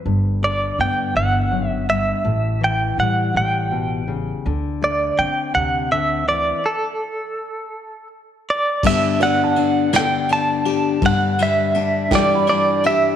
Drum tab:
CC |------|------|------|------|
RD |------|------|------|------|
SD |------|------|------|------|
BD |------|------|------|------|

CC |x-----|------|
RD |-xxxxx|xxxxxx|
SD |---o--|---o--|
BD |o-----|o--o--|